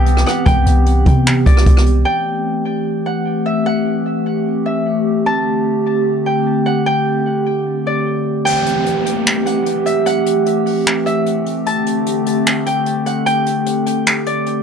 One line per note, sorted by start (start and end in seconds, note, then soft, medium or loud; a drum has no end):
0.00 0.25 C2 loud
0.00 2.02 E3 medium
0.00 2.03 B3 medium
0.00 2.02 C4 medium
0.00 2.03 G4 medium
0.00 0.32 G5 medium
0.00 0.31 A5 loud
0.06 closed hi-hat medium
0.17 cross-stick loud
0.26 0.52 F#5 medium
0.26 cross-stick loud
0.26 closed hi-hat medium
0.46 0.66 C2 loud
0.46 2.01 G5 medium
0.46 kick loud
0.46 closed hi-hat medium
0.66 1.05 C2 loud
0.66 closed hi-hat medium
0.86 closed hi-hat medium
1.06 1.45 C3 loud
1.06 kick loud
1.06 closed hi-hat medium
1.26 finger snap loud
1.26 closed hi-hat medium
1.46 1.66 C2 loud
1.46 3.31 D5 medium
1.46 kick loud
1.46 closed hi-hat medium
1.57 cross-stick loud
1.66 2.05 C2 loud
1.66 kick medium
1.66 closed hi-hat medium
1.77 cross-stick loud
1.86 closed hi-hat medium
2.05 5.23 E3 medium
2.05 8.42 A3 medium
2.05 8.42 C4 medium
2.05 8.42 G4 medium
2.05 3.12 G5 loud
3.06 3.66 F#5 medium
3.46 4.65 E5 medium
3.66 5.27 F#5 loud
4.66 6.38 E5 medium
5.26 8.43 D3 medium
5.26 6.71 A5 loud
6.26 6.72 G5 medium
6.66 6.92 F#5 medium
6.86 8.42 G5 loud
7.87 9.71 D5 medium
8.45 11.63 E3 medium
8.45 14.63 A3 medium
8.45 14.63 C4 medium
8.45 11.63 G4 medium
8.45 9.52 G5 loud
8.45 crash loud
8.45 downlifter medium
8.66 closed hi-hat medium
8.86 closed hi-hat medium
9.06 closed hi-hat medium
9.26 finger snap loud
9.26 closed hi-hat medium
9.46 10.06 F#5 medium
9.46 closed hi-hat medium
9.66 closed hi-hat medium
9.86 11.06 E5 medium
9.86 closed hi-hat medium
10.06 11.67 F#5 loud
10.06 closed hi-hat medium
10.26 closed hi-hat medium
10.46 closed hi-hat medium
10.66 open hi-hat medium
10.86 finger snap loud
10.86 closed hi-hat medium
11.06 12.78 E5 medium
11.06 closed hi-hat medium
11.26 closed hi-hat medium
11.46 closed hi-hat medium
11.66 14.63 D3 medium
11.66 14.63 G4 medium
11.66 13.11 A5 loud
11.66 closed hi-hat medium
11.86 closed hi-hat medium
12.06 closed hi-hat medium
12.26 closed hi-hat medium
12.46 finger snap loud
12.46 closed hi-hat medium
12.66 13.12 G5 medium
12.66 closed hi-hat medium
12.86 closed hi-hat medium
13.06 13.32 F#5 medium
13.06 closed hi-hat medium
13.26 14.63 G5 loud
13.26 closed hi-hat medium
13.46 closed hi-hat medium
13.66 closed hi-hat medium
13.86 closed hi-hat medium
14.06 finger snap loud
14.06 closed hi-hat medium
14.26 14.63 D5 medium
14.26 closed hi-hat medium
14.46 closed hi-hat medium